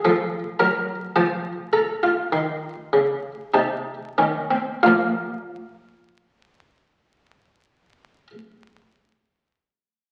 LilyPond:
<<
  \new Staff \with { instrumentName = "Harpsichord" } { \time 4/4 \key bes \minor \tempo 4 = 45 << { c'''8 bes''8 a''8 bes''8 c'''4 a''4 | <f bes f''>1 | } \\ { a'8 bes'8 c''8 a'16 f'4~ f'16 ees'8 des'16 c'16 | f'1 | } >> }
  \new Staff \with { instrumentName = "Harpsichord" } { \clef bass \time 4/4 \key bes \minor f8 ges8 f4 ees8 des8 c8 ees8 | bes,1 | }
>>